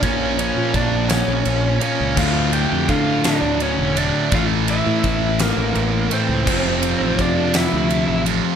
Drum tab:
CC |------|x-----|------|x-----|
RD |xxxxxx|-xxxxx|xxxxxx|-xxxxx|
SD |---o--|---o--|---o--|---o--|
BD |o-o---|o-o---|o-o---|o-o---|